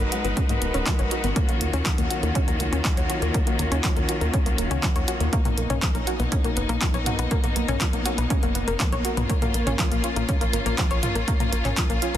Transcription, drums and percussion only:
0.12 closed hi-hat loud
0.25 closed hi-hat soft
0.37 kick loud
0.37 closed hi-hat medium
0.49 closed hi-hat soft
0.62 closed hi-hat loud
0.74 closed hi-hat soft
0.86 kick loud
0.86 clap loud
0.86 closed hi-hat medium
0.99 closed hi-hat soft
1.11 closed hi-hat loud
1.24 closed hi-hat soft
1.36 kick loud
1.36 closed hi-hat medium
1.49 closed hi-hat soft
1.61 closed hi-hat loud
1.73 closed hi-hat soft
1.86 kick loud
1.86 clap loud
1.86 closed hi-hat medium
1.98 closed hi-hat soft
2.11 closed hi-hat loud
2.23 closed hi-hat soft
2.35 kick loud
2.35 closed hi-hat medium
2.48 closed hi-hat soft
2.60 closed hi-hat loud
2.73 closed hi-hat soft
2.85 kick loud
2.85 clap loud
2.85 closed hi-hat medium
2.97 closed hi-hat soft
3.10 closed hi-hat loud
3.22 closed hi-hat soft
3.34 kick loud
3.34 closed hi-hat medium
3.47 closed hi-hat medium
3.59 closed hi-hat loud
3.72 closed hi-hat soft
3.84 kick loud
3.84 clap loud
3.84 closed hi-hat medium
3.97 closed hi-hat soft
4.09 closed hi-hat loud
4.21 closed hi-hat soft
4.34 kick loud
4.34 closed hi-hat medium
4.46 closed hi-hat soft
4.58 closed hi-hat loud
4.71 closed hi-hat soft
4.83 kick loud
4.83 clap loud
4.83 closed hi-hat medium
4.96 closed hi-hat soft
5.08 closed hi-hat loud
5.20 closed hi-hat soft
5.33 kick loud
5.33 closed hi-hat medium
5.45 closed hi-hat soft
5.45 mid tom medium
5.58 closed hi-hat loud
5.70 closed hi-hat soft
5.70 mid tom medium
5.82 kick loud
5.82 clap loud
5.82 closed hi-hat medium
5.95 closed hi-hat soft
6.07 closed hi-hat loud
6.20 closed hi-hat soft
6.32 kick loud
6.32 closed hi-hat medium
6.44 closed hi-hat soft
6.57 closed hi-hat loud
6.69 closed hi-hat soft
6.81 kick loud
6.81 clap loud
6.81 closed hi-hat medium
6.94 closed hi-hat soft
7.06 closed hi-hat loud
7.06 mid tom medium
7.19 closed hi-hat soft
7.31 kick loud
7.31 closed hi-hat medium
7.44 closed hi-hat soft
7.44 mid tom medium
7.56 closed hi-hat loud
7.68 closed hi-hat soft
7.68 mid tom medium
7.81 kick loud
7.81 clap loud
7.81 closed hi-hat medium
7.93 closed hi-hat soft
8.06 closed hi-hat loud
8.18 closed hi-hat soft
8.30 kick loud
8.30 closed hi-hat medium
8.43 closed hi-hat soft
8.55 closed hi-hat loud
8.68 closed hi-hat soft
8.80 kick loud
8.80 clap loud
8.80 closed hi-hat medium
8.92 closed hi-hat soft
9.05 closed hi-hat loud
9.17 closed hi-hat soft
9.17 mid tom loud
9.29 kick loud
9.29 closed hi-hat medium
9.42 closed hi-hat soft
9.42 mid tom medium
9.54 closed hi-hat loud
9.67 closed hi-hat soft
9.67 mid tom medium
9.79 kick loud
9.79 clap loud
9.79 closed hi-hat medium
9.92 closed hi-hat soft
10.04 closed hi-hat loud
10.16 closed hi-hat soft
10.29 kick loud
10.29 closed hi-hat medium
10.41 closed hi-hat soft
10.53 closed hi-hat loud
10.66 closed hi-hat soft
10.78 kick loud
10.78 clap loud
10.78 closed hi-hat medium
10.91 closed hi-hat soft
11.03 closed hi-hat loud
11.03 mid tom medium
11.15 closed hi-hat soft
11.28 kick loud
11.28 closed hi-hat medium
11.40 closed hi-hat soft
11.40 mid tom medium
11.53 closed hi-hat loud
11.65 clap soft
11.65 closed hi-hat soft
11.65 mid tom medium
11.77 kick loud
11.77 clap loud
11.77 closed hi-hat medium
11.90 closed hi-hat soft
12.02 closed hi-hat loud

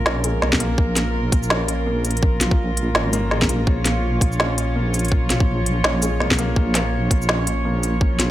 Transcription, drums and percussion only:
0.06 snare loud
0.24 closed hi-hat medium
0.42 snare medium
0.53 kick medium
0.53 snare medium
0.60 closed hi-hat medium
0.78 kick loud
0.96 snare medium
0.96 closed hi-hat medium
1.32 kick loud
1.32 closed hi-hat medium
1.43 shaker soft
1.50 snare loud
1.68 closed hi-hat medium
2.05 closed hi-hat medium
2.05 shaker soft
2.11 closed hi-hat medium
2.17 closed hi-hat soft
2.23 kick loud
2.41 snare medium
2.41 closed hi-hat medium
2.51 kick loud
2.77 closed hi-hat medium
2.95 snare loud
3.13 closed hi-hat medium
3.13 shaker medium
3.31 snare medium
3.42 kick medium
3.42 snare medium
3.49 closed hi-hat medium
3.67 kick loud
3.85 snare medium
3.85 closed hi-hat medium
4.21 kick loud
4.21 closed hi-hat medium
4.32 shaker soft
4.40 snare loud
4.58 closed hi-hat medium
4.94 closed hi-hat medium
4.94 shaker soft
4.99 closed hi-hat soft
5.05 closed hi-hat soft
5.08 kick loud
5.08 closed hi-hat soft
5.30 snare medium
5.30 closed hi-hat medium
5.40 kick loud
5.66 closed hi-hat medium
5.84 snare loud
6.02 closed hi-hat medium
6.02 shaker medium
6.20 snare medium
6.31 kick medium
6.31 snare medium
6.39 closed hi-hat medium
6.56 kick loud
6.75 snare medium
6.75 closed hi-hat medium
7.11 kick loud
7.11 closed hi-hat medium
7.22 shaker soft
7.29 snare loud
7.47 closed hi-hat medium
7.83 closed hi-hat medium
7.83 shaker soft
8.01 kick loud
8.20 snare medium
8.20 closed hi-hat medium

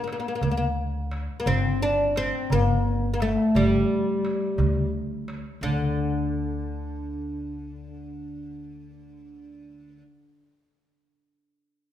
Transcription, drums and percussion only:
0.08 darbuka tek medium
0.41 darbuka dum medium
0.77 darbuka ka soft
1.11 darbuka tek medium
1.46 darbuka dum medium
1.82 darbuka ka soft
2.16 darbuka tek medium
2.50 darbuka dum medium
2.85 darbuka ka soft
3.20 darbuka tek medium
3.55 darbuka dum medium
4.25 darbuka tek medium
4.58 darbuka dum medium
4.93 darbuka ka soft
5.28 darbuka tek medium
5.63 darbuka dum medium

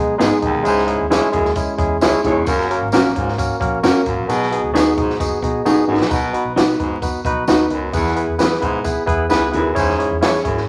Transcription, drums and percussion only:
0.20 snare loud
0.20 closed hi-hat medium
0.20 tambourine medium
0.42 kick medium
0.42 closed hi-hat medium
0.65 closed hi-hat medium
0.65 tambourine medium
0.78 snare soft
0.88 closed hi-hat medium
1.11 snare loud
1.11 closed hi-hat loud
1.11 tambourine medium
1.33 kick medium
1.33 closed hi-hat medium
1.45 snare soft
1.55 kick medium
1.55 closed hi-hat medium
1.55 tambourine medium
1.79 kick loud
1.79 closed hi-hat medium
2.01 snare loud
2.01 closed hi-hat medium
2.01 tambourine loud
2.24 kick medium
2.24 closed hi-hat medium
2.46 kick loud
2.46 closed hi-hat medium
2.46 tambourine medium
2.60 snare soft
2.71 closed hi-hat medium
2.92 snare loud
2.92 closed hi-hat loud
2.92 tambourine medium
3.06 snare soft
3.16 kick medium
3.16 closed hi-hat medium
3.28 snare soft
3.38 kick medium
3.38 closed hi-hat medium
3.38 tambourine medium
3.61 kick medium
3.61 closed hi-hat medium
3.84 snare loud
3.84 closed hi-hat medium
3.84 tambourine loud
4.06 kick medium
4.06 closed hi-hat medium
4.29 closed hi-hat medium
4.29 tambourine medium
4.43 snare soft
4.52 closed hi-hat medium
4.75 snare loud
4.75 closed hi-hat loud
4.75 tambourine medium
4.97 kick loud
4.97 closed hi-hat medium
5.10 snare soft
5.20 kick medium
5.20 closed hi-hat medium
5.20 tambourine medium
5.43 kick medium
5.43 closed hi-hat medium
5.66 tambourine medium
6.01 snare loud
6.11 kick loud
6.11 closed hi-hat medium
6.11 tambourine medium
6.34 closed hi-hat medium
6.57 snare loud
6.57 closed hi-hat loud
6.57 tambourine medium
6.70 snare soft
6.80 kick medium
6.80 closed hi-hat medium
7.02 kick medium
7.02 closed hi-hat medium
7.02 tambourine medium
7.25 kick medium
7.25 closed hi-hat medium
7.48 snare loud
7.48 closed hi-hat medium
7.48 tambourine loud
7.70 closed hi-hat medium
7.93 kick loud
7.93 closed hi-hat medium
7.93 tambourine medium
8.06 snare soft
8.16 closed hi-hat medium
8.39 snare loud
8.39 closed hi-hat loud
8.39 tambourine medium
8.52 snare soft
8.62 kick medium
8.62 closed hi-hat medium
8.84 kick medium
8.84 closed hi-hat medium
8.84 tambourine medium
9.07 kick medium
9.07 closed hi-hat medium
9.30 snare loud
9.30 closed hi-hat medium
9.30 tambourine medium
9.53 closed hi-hat medium
9.76 kick loud
9.76 closed hi-hat medium
9.76 tambourine medium
9.89 snare soft
10.00 closed hi-hat medium
10.22 snare loud
10.22 closed hi-hat loud
10.22 tambourine medium
10.35 snare soft
10.45 kick medium
10.45 closed hi-hat medium
10.57 snare soft

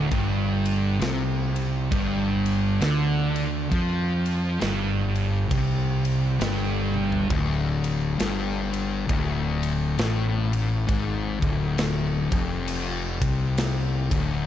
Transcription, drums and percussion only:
0.11 kick loud
0.11 ride medium
0.65 ride medium
1.01 snare loud
1.01 ride loud
1.56 ride medium
1.92 kick loud
1.92 ride loud
2.46 ride medium
2.81 snare loud
2.81 ride loud
3.36 ride medium
3.71 kick loud
3.71 ride medium
4.26 ride medium
4.61 snare loud
4.61 ride loud
5.15 ride medium
5.51 kick loud
5.51 ride loud
6.05 ride medium
6.41 snare loud
6.41 ride loud
6.94 high tom medium
7.12 floor tom medium
7.30 kick loud
7.30 ride loud
7.84 ride medium
8.20 snare loud
8.20 ride loud
8.73 ride medium
9.09 kick loud
9.09 ride loud
9.63 ride medium
9.99 snare loud
9.99 ride loud
10.53 ride medium
10.89 kick loud
10.89 ride loud
11.42 kick loud
11.42 ride medium
11.78 snare loud
11.78 ride loud
12.32 kick loud
12.32 ride medium
12.68 ride loud
13.22 kick loud
13.22 ride loud
13.57 snare loud
13.57 ride loud
14.11 kick loud
14.11 ride medium

